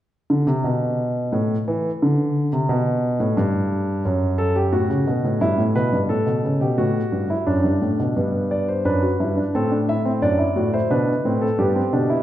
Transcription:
0.30 D3
0.47 C3
0.64 B2
1.32 A2
1.68 E3
2.02 D3
2.53 C3
2.69 B2
3.20 A2
3.37 G2
4.05 F#2
4.38 A4
4.56 G4
4.72 A2 F#4
4.90 C#3
5.07 B2
5.25 A2
5.41 G2 E4
5.58 A2
5.75 B2 B4
5.92 G2
6.09 A2 A4
6.26 B2
6.44 C#3
6.61 B2 G4
6.78 A2 F#4
7.12 G2
7.30 E4
7.47 F#2 D4
7.64 G2
7.82 A2
8.00 B2
8.16 G2 B3
8.51 D5
8.68 C5
8.85 F#2 D4 B4
9.03 F#4
9.20 G2 E4
9.37 D4
9.55 A2 C4 A4
9.71 D4
9.89 E4 E5
10.05 C4
10.22 F#2 D4 D5
10.39 E4
10.56 A2 F#4
10.74 E4 C5
10.90 B2 D4 B4
11.25 A2 C4
11.42 A4
11.58 G2 B3 G4
11.76 C4
11.93 B2 D4
12.10 E4

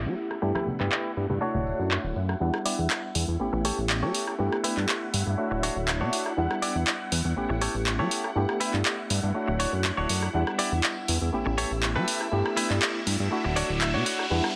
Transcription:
Already playing: A3 B3 C#4 E4 G4 F#5
0.06 F#3
0.17 tambourine
0.31 cross-stick, tambourine
0.42 G2 A3 B3 D4 E4 G4, muted clean electric guitar stroke, tambourine
0.55 E4 G4 B4, cross-stick, high conga
0.67 tambourine, high conga, low conga
0.80 G2 E4 G4 B4, clap, tambourine
0.92 clap
1.16 G2, tambourine
1.29 G2, tambourine, low conga
1.41 A3 D4 E4 F#4 C#5, tambourine
1.55 D1, low conga
1.67 tambourine
1.79 F#2, tambourine
1.91 clap
2.04 D1
2.15 F#2, tambourine
2.29 cross-stick, tambourine
2.40 E2 G3 B3 D4 E4 F#5
2.54 cross-stick
2.65 E4 G4 D5, open hi-hat
2.79 E2
2.90 muted clean electric guitar stroke, clap
3.15 E2, open hi-hat
3.28 E2
3.39 A1 A3 B3 C#4 E4 G4
3.53 A1, muted clean electric guitar stroke
3.65 G4 A4 C#5, open hi-hat
3.78 A1
3.89 muted clean electric guitar stroke, clap
4.03 F#3 G4 A4 C#5
4.15 open hi-hat
4.27 cross-stick
4.38 G2 A3 B3 D4 E4 G4
4.52 cross-stick
4.64 E4 G4 B4, open hi-hat
4.77 G2, clap
4.89 muted clean electric guitar stroke, clap
5.14 G2, open hi-hat
5.27 G2
5.37 A3 D4 E4 F#4 C#5
5.51 D1, muted clean electric guitar stroke
5.63 D4 F#4 C#5, open hi-hat
5.76 D1
5.88 muted clean electric guitar stroke, clap
6.01 B2 D4 F#4 C#5
6.13 open hi-hat
6.26 cross-stick
6.37 E2 G3 B3 D4 E4 F#5
6.51 cross-stick
6.62 E4 G4 D5, open hi-hat
6.75 E2
6.87 muted clean electric guitar stroke, clap
7.12 E2, open hi-hat
7.25 E2
7.36 A1 A3 B3 C#4 E4 G4
7.49 A1, muted clean electric guitar stroke
7.61 G4 A4 C#5, open hi-hat
7.74 A1
7.86 muted clean electric guitar stroke, clap
7.99 F#3 G4 A4 C#5
8.11 open hi-hat
8.24 cross-stick
8.35 G2 A3 B3 D4 E4 G4
8.49 cross-stick
8.60 E4 G4 B4, open hi-hat
8.74 G2, clap
8.85 muted clean electric guitar stroke, clap
9.10 G2, open hi-hat
9.23 G2
9.35 A3 D4 E4 F#4 C#5
9.48 D1, muted clean electric guitar stroke
9.60 D4 F#4 C#5, open hi-hat
9.73 F#2
9.84 muted clean electric guitar stroke, clap
9.97 D1 D4 F#4 C#5
10.09 F#2, open hi-hat
10.23 cross-stick
10.33 E2 G3 B3 D4 E4 E5 F#5, riser
10.47 cross-stick
10.59 E4 G4 D5, open hi-hat
10.72 E2
10.83 muted clean electric guitar stroke, clap
11.08 E2, open hi-hat
11.22 E2
11.33 A1 A3 B3 C#4 E4 G4
11.46 A1, muted clean electric guitar stroke
11.58 G4 A4 C#5, open hi-hat
11.71 A1
11.83 muted clean electric guitar stroke, clap
11.96 F#3 G4 A4 B4
12.08 open hi-hat
12.21 cross-stick
12.32 G2 A3 B3 D4 E4 G4
12.46 cross-stick
12.57 E4 G4 B4, open hi-hat
12.70 G2, clap
12.81 muted clean electric guitar stroke, clap
13.07 G2, open hi-hat
13.20 G2
13.31 A3 D4 E4 F#4
13.44 D1, muted clean electric guitar stroke
13.56 D4 F#4 C#5 D5, open hi-hat
13.69 D1
13.81 E5, muted clean electric guitar stroke, clap
13.94 B2 D4 F#4 C#5
14.06 F#5, open hi-hat
14.19 cross-stick
14.30 E2 G3 B3 D4 E4 F#5
14.44 cross-stick

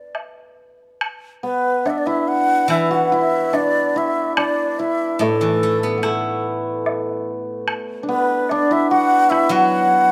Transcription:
Already playing: D4 D5
0.15 high woodblock, low woodblock
1.01 high woodblock
1.43 B3 B4
1.85 D4 D5 E5, low woodblock
1.98 D5
2.06 E4 E5
2.28 F#5
2.68 E3 E4 E5, high woodblock
2.91 F#4 F#5
3.12 E4 E5
3.53 D4 D5, low woodblock
3.96 E4 E5
4.37 D4 D5, high woodblock
4.79 E4 E5
5.19 A2 A3 A4, low woodblock
5.41 E3
5.63 A3
5.83 B3
5.98 B3
6.03 A3 E4, high woodblock
6.86 low woodblock
7.68 high woodblock
8.03 D4
8.09 B3 B4
8.49 D4 D5, low woodblock
8.71 E4 E5
8.91 F#4 F#5
9.30 E4 E5, high woodblock
9.49 F#3 F#4 F#5

